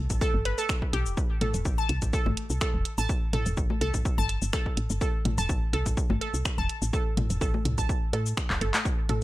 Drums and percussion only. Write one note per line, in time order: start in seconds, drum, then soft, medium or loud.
0.10 kick medium
0.10 closed hi-hat soft
0.10 cabasa medium
0.21 kick loud
0.21 cabasa soft
0.45 closed hi-hat medium
0.58 cabasa medium
0.69 finger snap loud
0.69 kick loud
0.69 cabasa soft
0.82 kick medium
0.93 closed hi-hat loud
1.06 cabasa soft
1.17 kick loud
1.17 cabasa soft
1.41 closed hi-hat medium
1.41 mid tom medium
1.41 high conga medium
1.54 closed hi-hat soft
1.54 cabasa soft
1.65 kick loud
1.65 cabasa soft
1.89 closed hi-hat loud
2.02 kick medium
2.02 closed hi-hat soft
2.02 cabasa medium
2.13 kick loud
2.13 cabasa soft
2.26 high conga medium
2.37 closed hi-hat medium
2.50 cabasa soft
2.61 finger snap loud
2.61 kick loud
2.61 cabasa soft
2.85 closed hi-hat loud
2.98 cabasa medium
3.09 kick loud
3.09 cabasa soft
3.33 closed hi-hat medium
3.33 mid tom medium
3.46 closed hi-hat soft
3.46 cabasa medium
3.57 kick loud
3.57 cabasa soft
3.70 high conga medium
3.81 closed hi-hat medium
3.94 kick medium
3.94 closed hi-hat soft
3.94 cabasa medium
4.05 kick loud
4.05 cabasa soft
4.29 closed hi-hat medium
4.42 cabasa medium
4.53 finger snap loud
4.53 kick loud
4.53 cabasa soft
4.66 kick medium
4.77 closed hi-hat medium
4.90 cabasa medium
5.01 kick loud
5.01 cabasa soft
5.25 closed hi-hat medium
5.25 mid tom medium
5.25 high conga soft
5.38 closed hi-hat soft
5.38 cabasa medium
5.49 kick loud
5.49 cabasa soft
5.73 closed hi-hat medium
5.86 kick medium
5.86 closed hi-hat soft
5.86 cabasa medium
5.97 kick loud
5.97 cabasa soft
6.10 high conga medium
6.21 closed hi-hat medium
6.34 cabasa medium
6.45 finger snap loud
6.45 kick loud
6.45 cabasa soft
6.69 closed hi-hat medium
6.82 cabasa medium
6.93 kick loud
6.93 cabasa soft
7.17 closed hi-hat medium
7.17 mid tom loud
7.17 high conga soft
7.30 closed hi-hat soft
7.30 cabasa medium
7.41 kick loud
7.41 cabasa soft
7.54 high conga medium
7.65 closed hi-hat loud
7.65 mid tom medium
7.78 kick medium
7.78 closed hi-hat soft
7.78 cabasa medium
7.89 kick loud
7.89 cabasa soft
8.13 closed hi-hat medium
8.26 cabasa medium
8.37 finger snap loud
8.37 kick loud
8.37 cabasa soft
8.50 kick medium
8.50 clap medium
8.61 closed hi-hat medium
8.74 clap loud
8.74 high conga soft
8.74 cabasa medium
8.85 kick loud
8.85 cabasa soft
9.09 closed hi-hat medium
9.09 mid tom medium
9.09 high conga medium